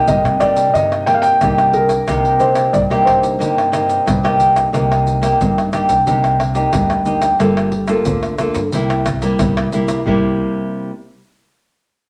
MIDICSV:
0, 0, Header, 1, 7, 480
1, 0, Start_track
1, 0, Key_signature, -3, "minor"
1, 0, Tempo, 665188
1, 1502, Time_signature, 4, 2, 24, 8
1, 8726, End_track
2, 0, Start_track
2, 0, Title_t, "Felt piano"
2, 0, Program_c, 0, 0
2, 58, Note_on_c, 0, 75, 84
2, 288, Note_on_c, 0, 74, 86
2, 307, Note_off_c, 0, 75, 0
2, 531, Note_on_c, 0, 75, 84
2, 542, Note_off_c, 0, 74, 0
2, 759, Note_off_c, 0, 75, 0
2, 768, Note_on_c, 0, 79, 97
2, 821, Note_off_c, 0, 79, 0
2, 825, Note_on_c, 0, 77, 89
2, 879, Note_off_c, 0, 77, 0
2, 879, Note_on_c, 0, 79, 106
2, 1233, Note_off_c, 0, 79, 0
2, 1253, Note_on_c, 0, 70, 83
2, 1733, Note_on_c, 0, 72, 77
2, 1751, Note_off_c, 0, 70, 0
2, 1971, Note_on_c, 0, 74, 85
2, 1985, Note_off_c, 0, 72, 0
2, 2026, Note_off_c, 0, 74, 0
2, 2202, Note_on_c, 0, 72, 75
2, 3143, Note_off_c, 0, 72, 0
2, 8726, End_track
3, 0, Start_track
3, 0, Title_t, "Nylon-string guitar"
3, 0, Program_c, 1, 24
3, 0, Note_on_c, 1, 58, 55
3, 0, Note_on_c, 1, 63, 63
3, 0, Note_on_c, 1, 67, 77
3, 56, Note_on_c, 1, 43, 57
3, 259, Note_off_c, 1, 58, 0
3, 260, Note_off_c, 1, 63, 0
3, 262, Note_off_c, 1, 67, 0
3, 293, Note_on_c, 1, 58, 51
3, 298, Note_on_c, 1, 63, 56
3, 299, Note_on_c, 1, 67, 68
3, 515, Note_off_c, 1, 43, 0
3, 544, Note_on_c, 1, 48, 57
3, 739, Note_off_c, 1, 58, 0
3, 741, Note_off_c, 1, 63, 0
3, 741, Note_off_c, 1, 67, 0
3, 776, Note_on_c, 1, 58, 50
3, 779, Note_on_c, 1, 63, 57
3, 783, Note_on_c, 1, 67, 61
3, 980, Note_off_c, 1, 58, 0
3, 982, Note_off_c, 1, 63, 0
3, 984, Note_off_c, 1, 67, 0
3, 999, Note_off_c, 1, 48, 0
3, 1025, Note_on_c, 1, 43, 57
3, 1026, Note_on_c, 1, 58, 63
3, 1029, Note_on_c, 1, 63, 56
3, 1033, Note_on_c, 1, 67, 63
3, 1333, Note_off_c, 1, 58, 0
3, 1334, Note_off_c, 1, 63, 0
3, 1336, Note_off_c, 1, 67, 0
3, 1480, Note_off_c, 1, 43, 0
3, 1500, Note_on_c, 1, 48, 62
3, 1503, Note_on_c, 1, 58, 55
3, 1504, Note_on_c, 1, 63, 55
3, 1508, Note_on_c, 1, 67, 66
3, 1703, Note_off_c, 1, 58, 0
3, 1705, Note_off_c, 1, 63, 0
3, 1706, Note_off_c, 1, 67, 0
3, 1725, Note_on_c, 1, 58, 56
3, 1730, Note_on_c, 1, 63, 62
3, 1734, Note_on_c, 1, 67, 65
3, 1957, Note_off_c, 1, 48, 0
3, 1972, Note_on_c, 1, 43, 65
3, 2055, Note_off_c, 1, 58, 0
3, 2056, Note_off_c, 1, 63, 0
3, 2059, Note_off_c, 1, 67, 0
3, 2094, Note_on_c, 1, 58, 72
3, 2096, Note_on_c, 1, 63, 71
3, 2100, Note_on_c, 1, 67, 73
3, 2419, Note_off_c, 1, 58, 0
3, 2420, Note_off_c, 1, 63, 0
3, 2422, Note_off_c, 1, 67, 0
3, 2432, Note_off_c, 1, 43, 0
3, 2445, Note_on_c, 1, 58, 58
3, 2449, Note_on_c, 1, 48, 49
3, 2453, Note_on_c, 1, 63, 50
3, 2453, Note_on_c, 1, 67, 56
3, 2655, Note_off_c, 1, 58, 0
3, 2658, Note_off_c, 1, 63, 0
3, 2659, Note_off_c, 1, 67, 0
3, 2684, Note_on_c, 1, 58, 51
3, 2687, Note_on_c, 1, 63, 62
3, 2690, Note_on_c, 1, 67, 57
3, 2911, Note_off_c, 1, 48, 0
3, 2930, Note_on_c, 1, 43, 60
3, 3014, Note_off_c, 1, 58, 0
3, 3016, Note_off_c, 1, 63, 0
3, 3017, Note_off_c, 1, 67, 0
3, 3054, Note_on_c, 1, 58, 61
3, 3057, Note_on_c, 1, 63, 61
3, 3061, Note_on_c, 1, 67, 73
3, 3380, Note_off_c, 1, 58, 0
3, 3380, Note_off_c, 1, 63, 0
3, 3383, Note_off_c, 1, 67, 0
3, 3392, Note_off_c, 1, 43, 0
3, 3409, Note_on_c, 1, 48, 60
3, 3413, Note_on_c, 1, 58, 53
3, 3413, Note_on_c, 1, 63, 62
3, 3416, Note_on_c, 1, 67, 59
3, 3739, Note_off_c, 1, 58, 0
3, 3739, Note_off_c, 1, 63, 0
3, 3741, Note_off_c, 1, 67, 0
3, 3764, Note_on_c, 1, 58, 60
3, 3767, Note_on_c, 1, 63, 58
3, 3773, Note_on_c, 1, 67, 61
3, 3872, Note_off_c, 1, 48, 0
3, 3901, Note_on_c, 1, 43, 59
3, 4094, Note_off_c, 1, 58, 0
3, 4096, Note_off_c, 1, 63, 0
3, 4099, Note_off_c, 1, 67, 0
3, 4133, Note_on_c, 1, 58, 57
3, 4136, Note_on_c, 1, 63, 51
3, 4141, Note_on_c, 1, 67, 57
3, 4278, Note_off_c, 1, 58, 0
3, 4280, Note_off_c, 1, 63, 0
3, 4282, Note_off_c, 1, 67, 0
3, 4357, Note_off_c, 1, 43, 0
3, 4375, Note_on_c, 1, 48, 58
3, 4380, Note_on_c, 1, 58, 50
3, 4383, Note_on_c, 1, 63, 53
3, 4383, Note_on_c, 1, 67, 53
3, 4605, Note_off_c, 1, 63, 0
3, 4606, Note_off_c, 1, 58, 0
3, 4607, Note_off_c, 1, 67, 0
3, 4727, Note_on_c, 1, 58, 62
3, 4731, Note_on_c, 1, 63, 56
3, 4733, Note_on_c, 1, 67, 64
3, 4835, Note_off_c, 1, 48, 0
3, 4863, Note_on_c, 1, 43, 53
3, 5057, Note_off_c, 1, 58, 0
3, 5057, Note_off_c, 1, 63, 0
3, 5059, Note_off_c, 1, 67, 0
3, 5089, Note_on_c, 1, 58, 56
3, 5094, Note_on_c, 1, 63, 53
3, 5097, Note_on_c, 1, 67, 65
3, 5237, Note_off_c, 1, 58, 0
3, 5238, Note_off_c, 1, 63, 0
3, 5240, Note_off_c, 1, 67, 0
3, 5318, Note_off_c, 1, 43, 0
3, 5333, Note_on_c, 1, 58, 58
3, 5336, Note_on_c, 1, 55, 66
3, 5340, Note_on_c, 1, 65, 51
3, 5344, Note_on_c, 1, 69, 66
3, 5563, Note_off_c, 1, 58, 0
3, 5565, Note_off_c, 1, 65, 0
3, 5568, Note_off_c, 1, 69, 0
3, 5691, Note_on_c, 1, 58, 67
3, 5695, Note_on_c, 1, 65, 71
3, 5695, Note_on_c, 1, 69, 68
3, 5796, Note_off_c, 1, 55, 0
3, 5820, Note_on_c, 1, 50, 66
3, 6019, Note_off_c, 1, 58, 0
3, 6019, Note_off_c, 1, 65, 0
3, 6020, Note_off_c, 1, 69, 0
3, 6057, Note_on_c, 1, 58, 59
3, 6063, Note_on_c, 1, 65, 59
3, 6065, Note_on_c, 1, 69, 67
3, 6201, Note_off_c, 1, 58, 0
3, 6204, Note_off_c, 1, 65, 0
3, 6205, Note_off_c, 1, 69, 0
3, 6277, Note_off_c, 1, 50, 0
3, 6307, Note_on_c, 1, 48, 53
3, 6310, Note_on_c, 1, 55, 57
3, 6311, Note_on_c, 1, 58, 57
3, 6313, Note_on_c, 1, 64, 64
3, 6530, Note_off_c, 1, 55, 0
3, 6532, Note_off_c, 1, 58, 0
3, 6533, Note_off_c, 1, 64, 0
3, 6653, Note_on_c, 1, 55, 62
3, 6656, Note_on_c, 1, 58, 60
3, 6661, Note_on_c, 1, 64, 77
3, 6761, Note_off_c, 1, 48, 0
3, 6781, Note_on_c, 1, 43, 61
3, 6979, Note_off_c, 1, 55, 0
3, 6981, Note_off_c, 1, 58, 0
3, 6984, Note_off_c, 1, 64, 0
3, 7021, Note_on_c, 1, 55, 49
3, 7024, Note_on_c, 1, 58, 60
3, 7027, Note_on_c, 1, 64, 63
3, 7223, Note_off_c, 1, 55, 0
3, 7225, Note_off_c, 1, 58, 0
3, 7226, Note_off_c, 1, 64, 0
3, 7238, Note_off_c, 1, 43, 0
3, 7257, Note_on_c, 1, 48, 65
3, 7264, Note_on_c, 1, 55, 63
3, 7268, Note_on_c, 1, 58, 71
3, 7271, Note_on_c, 1, 64, 84
3, 7868, Note_off_c, 1, 48, 0
3, 7868, Note_off_c, 1, 55, 0
3, 7868, Note_off_c, 1, 58, 0
3, 7868, Note_off_c, 1, 64, 0
3, 8726, End_track
4, 0, Start_track
4, 0, Title_t, "Upright bass"
4, 0, Program_c, 2, 32
4, 59, Note_on_c, 2, 36, 75
4, 162, Note_off_c, 2, 36, 0
4, 179, Note_on_c, 2, 48, 87
4, 486, Note_off_c, 2, 48, 0
4, 540, Note_on_c, 2, 43, 79
4, 948, Note_off_c, 2, 43, 0
4, 1021, Note_on_c, 2, 36, 90
4, 1429, Note_off_c, 2, 36, 0
4, 1502, Note_on_c, 2, 36, 83
4, 1910, Note_off_c, 2, 36, 0
4, 1979, Note_on_c, 2, 36, 85
4, 2082, Note_off_c, 2, 36, 0
4, 2103, Note_on_c, 2, 48, 80
4, 2408, Note_off_c, 2, 48, 0
4, 2457, Note_on_c, 2, 43, 82
4, 2867, Note_off_c, 2, 43, 0
4, 2941, Note_on_c, 2, 36, 94
4, 3349, Note_off_c, 2, 36, 0
4, 3422, Note_on_c, 2, 36, 94
4, 3830, Note_off_c, 2, 36, 0
4, 3905, Note_on_c, 2, 43, 80
4, 4210, Note_off_c, 2, 43, 0
4, 4253, Note_on_c, 2, 36, 92
4, 4359, Note_off_c, 2, 36, 0
4, 4382, Note_on_c, 2, 36, 93
4, 4790, Note_off_c, 2, 36, 0
4, 4864, Note_on_c, 2, 38, 90
4, 5272, Note_off_c, 2, 38, 0
4, 5346, Note_on_c, 2, 31, 96
4, 5752, Note_off_c, 2, 31, 0
4, 5827, Note_on_c, 2, 38, 81
4, 6131, Note_off_c, 2, 38, 0
4, 6173, Note_on_c, 2, 43, 103
4, 6279, Note_off_c, 2, 43, 0
4, 6305, Note_on_c, 2, 36, 96
4, 6712, Note_off_c, 2, 36, 0
4, 6787, Note_on_c, 2, 36, 85
4, 7193, Note_off_c, 2, 36, 0
4, 7266, Note_on_c, 2, 36, 80
4, 7488, Note_off_c, 2, 36, 0
4, 8726, End_track
5, 0, Start_track
5, 0, Title_t, "Pandeiro"
5, 55, Note_on_c, 9, 54, 80
5, 127, Note_off_c, 9, 54, 0
5, 182, Note_on_c, 9, 54, 31
5, 254, Note_off_c, 9, 54, 0
5, 292, Note_on_c, 9, 54, 60
5, 364, Note_off_c, 9, 54, 0
5, 407, Note_on_c, 9, 54, 67
5, 480, Note_off_c, 9, 54, 0
5, 542, Note_on_c, 9, 54, 71
5, 614, Note_off_c, 9, 54, 0
5, 664, Note_on_c, 9, 54, 33
5, 736, Note_off_c, 9, 54, 0
5, 773, Note_on_c, 9, 54, 60
5, 845, Note_off_c, 9, 54, 0
5, 887, Note_on_c, 9, 54, 63
5, 959, Note_off_c, 9, 54, 0
5, 1018, Note_on_c, 9, 54, 78
5, 1090, Note_off_c, 9, 54, 0
5, 1142, Note_on_c, 9, 54, 33
5, 1214, Note_off_c, 9, 54, 0
5, 1251, Note_on_c, 9, 54, 57
5, 1323, Note_off_c, 9, 54, 0
5, 1365, Note_on_c, 9, 54, 61
5, 1437, Note_off_c, 9, 54, 0
5, 1498, Note_on_c, 9, 54, 70
5, 1570, Note_off_c, 9, 54, 0
5, 1623, Note_on_c, 9, 54, 30
5, 1695, Note_off_c, 9, 54, 0
5, 1731, Note_on_c, 9, 54, 52
5, 1803, Note_off_c, 9, 54, 0
5, 1843, Note_on_c, 9, 54, 63
5, 1915, Note_off_c, 9, 54, 0
5, 1976, Note_on_c, 9, 54, 78
5, 2048, Note_off_c, 9, 54, 0
5, 2102, Note_on_c, 9, 54, 33
5, 2174, Note_off_c, 9, 54, 0
5, 2217, Note_on_c, 9, 54, 62
5, 2289, Note_off_c, 9, 54, 0
5, 2333, Note_on_c, 9, 54, 66
5, 2405, Note_off_c, 9, 54, 0
5, 2463, Note_on_c, 9, 54, 73
5, 2536, Note_off_c, 9, 54, 0
5, 2586, Note_on_c, 9, 54, 32
5, 2658, Note_off_c, 9, 54, 0
5, 2694, Note_on_c, 9, 54, 61
5, 2766, Note_off_c, 9, 54, 0
5, 2810, Note_on_c, 9, 54, 61
5, 2883, Note_off_c, 9, 54, 0
5, 2940, Note_on_c, 9, 54, 75
5, 3013, Note_off_c, 9, 54, 0
5, 3065, Note_on_c, 9, 54, 37
5, 3137, Note_off_c, 9, 54, 0
5, 3174, Note_on_c, 9, 54, 61
5, 3246, Note_off_c, 9, 54, 0
5, 3293, Note_on_c, 9, 54, 62
5, 3365, Note_off_c, 9, 54, 0
5, 3421, Note_on_c, 9, 54, 78
5, 3494, Note_off_c, 9, 54, 0
5, 3548, Note_on_c, 9, 54, 33
5, 3620, Note_off_c, 9, 54, 0
5, 3658, Note_on_c, 9, 54, 49
5, 3730, Note_off_c, 9, 54, 0
5, 3773, Note_on_c, 9, 54, 65
5, 3845, Note_off_c, 9, 54, 0
5, 3903, Note_on_c, 9, 54, 81
5, 3975, Note_off_c, 9, 54, 0
5, 4028, Note_on_c, 9, 54, 32
5, 4101, Note_off_c, 9, 54, 0
5, 4135, Note_on_c, 9, 54, 60
5, 4207, Note_off_c, 9, 54, 0
5, 4250, Note_on_c, 9, 54, 66
5, 4322, Note_off_c, 9, 54, 0
5, 4380, Note_on_c, 9, 54, 67
5, 4452, Note_off_c, 9, 54, 0
5, 4502, Note_on_c, 9, 54, 35
5, 4574, Note_off_c, 9, 54, 0
5, 4617, Note_on_c, 9, 54, 61
5, 4690, Note_off_c, 9, 54, 0
5, 4726, Note_on_c, 9, 54, 64
5, 4798, Note_off_c, 9, 54, 0
5, 4854, Note_on_c, 9, 54, 84
5, 4927, Note_off_c, 9, 54, 0
5, 4978, Note_on_c, 9, 54, 33
5, 5050, Note_off_c, 9, 54, 0
5, 5092, Note_on_c, 9, 54, 52
5, 5165, Note_off_c, 9, 54, 0
5, 5207, Note_on_c, 9, 54, 67
5, 5279, Note_off_c, 9, 54, 0
5, 5339, Note_on_c, 9, 54, 81
5, 5411, Note_off_c, 9, 54, 0
5, 5462, Note_on_c, 9, 54, 32
5, 5535, Note_off_c, 9, 54, 0
5, 5569, Note_on_c, 9, 54, 59
5, 5641, Note_off_c, 9, 54, 0
5, 5683, Note_on_c, 9, 54, 66
5, 5755, Note_off_c, 9, 54, 0
5, 5810, Note_on_c, 9, 54, 80
5, 5882, Note_off_c, 9, 54, 0
5, 5936, Note_on_c, 9, 54, 33
5, 6008, Note_off_c, 9, 54, 0
5, 6050, Note_on_c, 9, 54, 64
5, 6122, Note_off_c, 9, 54, 0
5, 6166, Note_on_c, 9, 54, 73
5, 6238, Note_off_c, 9, 54, 0
5, 6295, Note_on_c, 9, 54, 74
5, 6367, Note_off_c, 9, 54, 0
5, 6422, Note_on_c, 9, 54, 33
5, 6494, Note_off_c, 9, 54, 0
5, 6535, Note_on_c, 9, 54, 65
5, 6607, Note_off_c, 9, 54, 0
5, 6652, Note_on_c, 9, 54, 70
5, 6725, Note_off_c, 9, 54, 0
5, 6777, Note_on_c, 9, 54, 79
5, 6849, Note_off_c, 9, 54, 0
5, 6906, Note_on_c, 9, 54, 37
5, 6978, Note_off_c, 9, 54, 0
5, 7017, Note_on_c, 9, 54, 59
5, 7089, Note_off_c, 9, 54, 0
5, 7132, Note_on_c, 9, 54, 67
5, 7204, Note_off_c, 9, 54, 0
5, 8726, End_track
6, 0, Start_track
6, 0, Title_t, "Tamborim"
6, 182, Note_on_c, 9, 60, 74
6, 254, Note_off_c, 9, 60, 0
6, 292, Note_on_c, 9, 60, 83
6, 364, Note_off_c, 9, 60, 0
6, 664, Note_on_c, 9, 60, 74
6, 736, Note_off_c, 9, 60, 0
6, 773, Note_on_c, 9, 60, 81
6, 845, Note_off_c, 9, 60, 0
6, 1018, Note_on_c, 9, 60, 80
6, 1090, Note_off_c, 9, 60, 0
6, 1142, Note_on_c, 9, 60, 81
6, 1214, Note_off_c, 9, 60, 0
6, 1365, Note_on_c, 9, 60, 65
6, 1437, Note_off_c, 9, 60, 0
6, 1498, Note_on_c, 9, 60, 78
6, 1570, Note_off_c, 9, 60, 0
6, 1843, Note_on_c, 9, 60, 78
6, 1915, Note_off_c, 9, 60, 0
6, 2102, Note_on_c, 9, 60, 70
6, 2174, Note_off_c, 9, 60, 0
6, 2217, Note_on_c, 9, 60, 80
6, 2289, Note_off_c, 9, 60, 0
6, 2586, Note_on_c, 9, 60, 71
6, 2658, Note_off_c, 9, 60, 0
6, 2694, Note_on_c, 9, 60, 87
6, 2766, Note_off_c, 9, 60, 0
6, 2940, Note_on_c, 9, 60, 73
6, 3013, Note_off_c, 9, 60, 0
6, 3065, Note_on_c, 9, 60, 84
6, 3137, Note_off_c, 9, 60, 0
6, 3293, Note_on_c, 9, 60, 78
6, 3365, Note_off_c, 9, 60, 0
6, 3421, Note_on_c, 9, 60, 70
6, 3494, Note_off_c, 9, 60, 0
6, 3548, Note_on_c, 9, 60, 72
6, 3620, Note_off_c, 9, 60, 0
6, 3773, Note_on_c, 9, 60, 72
6, 3845, Note_off_c, 9, 60, 0
6, 4028, Note_on_c, 9, 60, 73
6, 4101, Note_off_c, 9, 60, 0
6, 4135, Note_on_c, 9, 60, 78
6, 4207, Note_off_c, 9, 60, 0
6, 4502, Note_on_c, 9, 60, 73
6, 4574, Note_off_c, 9, 60, 0
6, 4617, Note_on_c, 9, 60, 85
6, 4690, Note_off_c, 9, 60, 0
6, 4854, Note_on_c, 9, 60, 74
6, 4927, Note_off_c, 9, 60, 0
6, 4978, Note_on_c, 9, 60, 77
6, 5050, Note_off_c, 9, 60, 0
6, 5207, Note_on_c, 9, 60, 70
6, 5279, Note_off_c, 9, 60, 0
6, 5339, Note_on_c, 9, 60, 84
6, 5411, Note_off_c, 9, 60, 0
6, 5462, Note_on_c, 9, 60, 78
6, 5535, Note_off_c, 9, 60, 0
6, 5683, Note_on_c, 9, 60, 70
6, 5755, Note_off_c, 9, 60, 0
6, 5936, Note_on_c, 9, 60, 68
6, 6008, Note_off_c, 9, 60, 0
6, 6050, Note_on_c, 9, 60, 79
6, 6122, Note_off_c, 9, 60, 0
6, 6422, Note_on_c, 9, 60, 86
6, 6494, Note_off_c, 9, 60, 0
6, 6535, Note_on_c, 9, 60, 89
6, 6607, Note_off_c, 9, 60, 0
6, 6777, Note_on_c, 9, 60, 76
6, 6849, Note_off_c, 9, 60, 0
6, 6906, Note_on_c, 9, 60, 90
6, 6978, Note_off_c, 9, 60, 0
6, 7132, Note_on_c, 9, 60, 73
6, 7204, Note_off_c, 9, 60, 0
6, 8726, End_track
7, 0, Start_track
7, 0, Title_t, "Drums"
7, 55, Note_on_c, 9, 82, 77
7, 55, Note_on_c, 9, 87, 99
7, 127, Note_off_c, 9, 82, 0
7, 127, Note_off_c, 9, 87, 0
7, 182, Note_on_c, 9, 82, 33
7, 254, Note_off_c, 9, 82, 0
7, 292, Note_on_c, 9, 82, 69
7, 292, Note_on_c, 9, 87, 65
7, 364, Note_off_c, 9, 82, 0
7, 364, Note_off_c, 9, 87, 0
7, 407, Note_on_c, 9, 82, 75
7, 480, Note_off_c, 9, 82, 0
7, 542, Note_on_c, 9, 82, 72
7, 542, Note_on_c, 9, 87, 53
7, 614, Note_off_c, 9, 82, 0
7, 614, Note_off_c, 9, 87, 0
7, 664, Note_on_c, 9, 82, 32
7, 736, Note_off_c, 9, 82, 0
7, 887, Note_on_c, 9, 82, 76
7, 959, Note_off_c, 9, 82, 0
7, 1018, Note_on_c, 9, 82, 76
7, 1018, Note_on_c, 9, 87, 98
7, 1090, Note_off_c, 9, 82, 0
7, 1090, Note_off_c, 9, 87, 0
7, 1142, Note_on_c, 9, 82, 34
7, 1214, Note_off_c, 9, 82, 0
7, 1365, Note_on_c, 9, 82, 72
7, 1437, Note_off_c, 9, 82, 0
7, 1498, Note_on_c, 9, 82, 83
7, 1498, Note_on_c, 9, 87, 49
7, 1570, Note_off_c, 9, 82, 0
7, 1570, Note_off_c, 9, 87, 0
7, 1623, Note_on_c, 9, 82, 30
7, 1695, Note_off_c, 9, 82, 0
7, 1731, Note_on_c, 9, 82, 59
7, 1803, Note_off_c, 9, 82, 0
7, 1843, Note_on_c, 9, 82, 69
7, 1915, Note_off_c, 9, 82, 0
7, 1976, Note_on_c, 9, 82, 75
7, 1976, Note_on_c, 9, 87, 91
7, 2048, Note_off_c, 9, 82, 0
7, 2048, Note_off_c, 9, 87, 0
7, 2102, Note_on_c, 9, 82, 33
7, 2174, Note_off_c, 9, 82, 0
7, 2217, Note_on_c, 9, 87, 74
7, 2289, Note_off_c, 9, 87, 0
7, 2333, Note_on_c, 9, 82, 82
7, 2405, Note_off_c, 9, 82, 0
7, 2463, Note_on_c, 9, 82, 71
7, 2463, Note_on_c, 9, 87, 51
7, 2536, Note_off_c, 9, 82, 0
7, 2536, Note_off_c, 9, 87, 0
7, 2586, Note_on_c, 9, 82, 34
7, 2658, Note_off_c, 9, 82, 0
7, 2694, Note_on_c, 9, 82, 74
7, 2766, Note_off_c, 9, 82, 0
7, 2810, Note_on_c, 9, 82, 80
7, 2883, Note_off_c, 9, 82, 0
7, 2940, Note_on_c, 9, 82, 79
7, 2940, Note_on_c, 9, 87, 105
7, 3013, Note_off_c, 9, 82, 0
7, 3013, Note_off_c, 9, 87, 0
7, 3065, Note_on_c, 9, 82, 33
7, 3137, Note_off_c, 9, 82, 0
7, 3174, Note_on_c, 9, 82, 68
7, 3246, Note_off_c, 9, 82, 0
7, 3293, Note_on_c, 9, 82, 80
7, 3365, Note_off_c, 9, 82, 0
7, 3421, Note_on_c, 9, 82, 76
7, 3421, Note_on_c, 9, 87, 55
7, 3494, Note_off_c, 9, 82, 0
7, 3494, Note_off_c, 9, 87, 0
7, 3548, Note_on_c, 9, 82, 30
7, 3620, Note_off_c, 9, 82, 0
7, 3658, Note_on_c, 9, 82, 61
7, 3730, Note_off_c, 9, 82, 0
7, 3773, Note_on_c, 9, 82, 80
7, 3845, Note_off_c, 9, 82, 0
7, 3903, Note_on_c, 9, 82, 79
7, 3903, Note_on_c, 9, 87, 104
7, 3975, Note_off_c, 9, 82, 0
7, 3975, Note_off_c, 9, 87, 0
7, 4028, Note_on_c, 9, 82, 27
7, 4101, Note_off_c, 9, 82, 0
7, 4135, Note_on_c, 9, 82, 65
7, 4207, Note_off_c, 9, 82, 0
7, 4250, Note_on_c, 9, 82, 76
7, 4322, Note_off_c, 9, 82, 0
7, 4380, Note_on_c, 9, 82, 77
7, 4380, Note_on_c, 9, 87, 54
7, 4452, Note_off_c, 9, 82, 0
7, 4452, Note_off_c, 9, 87, 0
7, 4502, Note_on_c, 9, 82, 33
7, 4574, Note_off_c, 9, 82, 0
7, 4726, Note_on_c, 9, 82, 67
7, 4798, Note_off_c, 9, 82, 0
7, 4854, Note_on_c, 9, 82, 85
7, 4854, Note_on_c, 9, 87, 99
7, 4927, Note_off_c, 9, 82, 0
7, 4927, Note_off_c, 9, 87, 0
7, 4978, Note_on_c, 9, 82, 34
7, 5050, Note_off_c, 9, 82, 0
7, 5092, Note_on_c, 9, 82, 73
7, 5165, Note_off_c, 9, 82, 0
7, 5207, Note_on_c, 9, 82, 78
7, 5279, Note_off_c, 9, 82, 0
7, 5339, Note_on_c, 9, 82, 82
7, 5339, Note_on_c, 9, 87, 59
7, 5411, Note_off_c, 9, 82, 0
7, 5411, Note_off_c, 9, 87, 0
7, 5462, Note_on_c, 9, 82, 33
7, 5535, Note_off_c, 9, 82, 0
7, 5683, Note_on_c, 9, 82, 74
7, 5755, Note_off_c, 9, 82, 0
7, 5810, Note_on_c, 9, 82, 84
7, 5810, Note_on_c, 9, 87, 94
7, 5882, Note_off_c, 9, 82, 0
7, 5882, Note_off_c, 9, 87, 0
7, 5936, Note_on_c, 9, 82, 29
7, 6008, Note_off_c, 9, 82, 0
7, 6050, Note_on_c, 9, 82, 67
7, 6122, Note_off_c, 9, 82, 0
7, 6166, Note_on_c, 9, 82, 82
7, 6238, Note_off_c, 9, 82, 0
7, 6295, Note_on_c, 9, 82, 69
7, 6295, Note_on_c, 9, 87, 49
7, 6367, Note_off_c, 9, 82, 0
7, 6367, Note_off_c, 9, 87, 0
7, 6422, Note_on_c, 9, 82, 34
7, 6494, Note_off_c, 9, 82, 0
7, 6535, Note_on_c, 9, 82, 74
7, 6535, Note_on_c, 9, 87, 72
7, 6607, Note_off_c, 9, 82, 0
7, 6607, Note_off_c, 9, 87, 0
7, 6652, Note_on_c, 9, 82, 74
7, 6725, Note_off_c, 9, 82, 0
7, 6777, Note_on_c, 9, 82, 83
7, 6777, Note_on_c, 9, 87, 102
7, 6849, Note_off_c, 9, 82, 0
7, 6849, Note_off_c, 9, 87, 0
7, 6906, Note_on_c, 9, 82, 31
7, 6978, Note_off_c, 9, 82, 0
7, 7017, Note_on_c, 9, 82, 73
7, 7089, Note_off_c, 9, 82, 0
7, 7132, Note_on_c, 9, 82, 88
7, 7204, Note_off_c, 9, 82, 0
7, 7263, Note_on_c, 9, 87, 103
7, 7335, Note_off_c, 9, 87, 0
7, 8726, End_track
0, 0, End_of_file